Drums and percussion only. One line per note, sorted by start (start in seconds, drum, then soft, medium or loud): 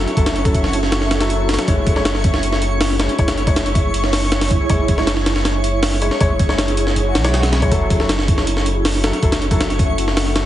0.08 closed hi-hat soft
0.17 kick medium
0.17 closed hi-hat medium
0.26 snare loud
0.26 closed hi-hat medium
0.36 closed hi-hat soft
0.45 kick medium
0.45 closed hi-hat medium
0.55 kick medium
0.55 closed hi-hat medium
0.64 snare medium
0.73 closed hi-hat medium
0.83 snare soft
0.92 snare loud
0.92 closed hi-hat medium
1.02 snare soft
1.11 snare loud
1.11 closed hi-hat medium
1.21 snare loud
1.21 closed hi-hat medium
1.30 closed hi-hat medium
1.49 snare medium
1.49 closed hi-hat medium
1.54 snare medium
1.54 closed hi-hat medium
1.59 snare loud
1.59 closed hi-hat medium
1.68 kick loud
1.68 closed hi-hat medium
1.87 kick medium
1.87 closed hi-hat medium
1.96 snare soft
2.05 snare loud
2.05 closed hi-hat medium
2.15 snare soft
2.24 kick loud
2.24 closed hi-hat medium
2.34 snare medium
2.43 closed hi-hat medium
2.52 snare soft
2.62 closed hi-hat medium
2.81 snare loud
2.81 open hi-hat medium
3.00 snare loud
3.00 closed hi-hat medium
3.09 closed hi-hat soft
3.19 kick medium
3.19 closed hi-hat medium
3.28 snare loud
3.28 closed hi-hat medium
3.37 closed hi-hat soft
3.47 kick medium
3.47 closed hi-hat medium
3.56 snare loud
3.56 closed hi-hat medium
3.66 closed hi-hat soft
3.75 kick medium
3.75 closed hi-hat medium
3.94 closed hi-hat medium
4.04 snare soft
4.13 snare loud
4.13 open hi-hat medium
4.32 snare loud
4.32 closed hi-hat medium
4.41 snare loud
4.41 open hi-hat medium
4.51 kick medium
4.51 closed hi-hat medium
4.70 kick loud
4.70 closed hi-hat medium
4.88 kick medium
4.88 closed hi-hat medium
4.98 snare soft
5.07 snare loud
5.07 closed hi-hat medium
5.17 snare soft
5.26 snare loud
5.26 closed hi-hat medium
5.36 snare medium
5.45 snare loud
5.45 closed hi-hat medium
5.64 closed hi-hat medium
5.83 snare loud
5.83 open hi-hat medium
6.02 closed hi-hat medium
6.11 snare soft
6.21 kick loud
6.21 closed hi-hat medium
6.39 kick medium
6.39 closed hi-hat medium
6.49 snare soft
6.58 snare loud
6.58 closed hi-hat medium
6.68 closed hi-hat soft
6.77 closed hi-hat medium
6.87 snare soft
6.96 closed hi-hat medium
7.15 snare loud
7.15 closed hi-hat medium
7.25 snare loud
7.25 closed hi-hat medium
7.34 snare loud
7.34 closed hi-hat medium
7.43 snare loud
7.43 closed hi-hat medium
7.53 snare loud
7.53 closed hi-hat medium
7.62 kick medium
7.62 closed hi-hat medium
7.72 kick loud
7.72 closed hi-hat medium
7.90 kick medium
7.90 closed hi-hat medium
8.00 snare soft
8.09 snare loud
8.09 closed hi-hat medium
8.19 snare soft
8.28 kick medium
8.28 closed hi-hat medium
8.38 snare medium
8.47 closed hi-hat medium
8.57 snare soft
8.66 closed hi-hat medium
8.85 snare loud
8.85 open hi-hat medium
9.04 snare loud
9.04 closed hi-hat medium
9.13 closed hi-hat soft
9.23 kick medium
9.23 closed hi-hat medium
9.32 snare loud
9.32 closed hi-hat medium
9.42 closed hi-hat soft
9.51 kick medium
9.51 closed hi-hat medium
9.61 snare loud
9.61 closed hi-hat medium
9.70 closed hi-hat soft
9.79 kick medium
9.79 closed hi-hat medium
9.98 closed hi-hat medium
10.08 snare soft
10.17 snare loud
10.17 open hi-hat medium
10.36 snare loud
10.36 closed hi-hat medium